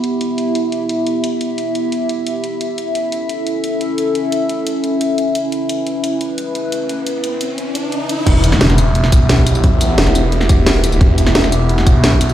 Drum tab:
CC |----------------|----------------|----------------|----------------|
HH |x-x-x-x-x-x-x-x-|x-x-x-x-x-x-x-x-|x-x-x-x-x-x-x-x-|x-x-x-x-x-x-x-x-|
TB |----------------|----------------|----------------|----------------|
SD |----------------|----------------|----------------|----------------|
BD |----------------|----------------|----------------|----------------|

CC |----------------|----------------|x---------------|----------------|
HH |x-x-x-x-x-x-x-x-|x-x-x-x-x-x-x-x-|x-x-x-x-x-x-x-x-|x-x-x-o-x-x-x-x-|
TB |----------------|----------------|--x--xx---x---xx|--x--xx---x---xx|
SD |----------------|----------------|---ooo---o--o---|----oo---o--o---|
BD |----------------|----------------|o---------o--o--|o---------o-----|

CC |----------------|
HH |x-x-x-x-x-x-x-x-|
TB |--x--xx---x---xx|
SD |---ooo---o--o---|
BD |o---------o--o--|